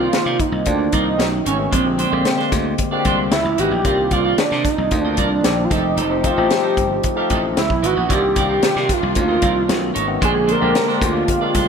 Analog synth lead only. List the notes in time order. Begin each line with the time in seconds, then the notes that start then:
Already playing: F4
0.40 D#4
0.67 D4
0.93 D#4
1.47 C#4
1.73 C4
3.32 E4
3.59 G4
4.12 F4
4.38 D4
4.65 D#4
5.01 D4
5.18 D4
5.64 F4
5.71 D#4
6.25 F4
6.51 G4
7.59 E4
7.86 F#4
8.13 G4
8.40 G4
8.92 F4
9.18 F4
10.25 G#4
10.51 A#4
11.04 F4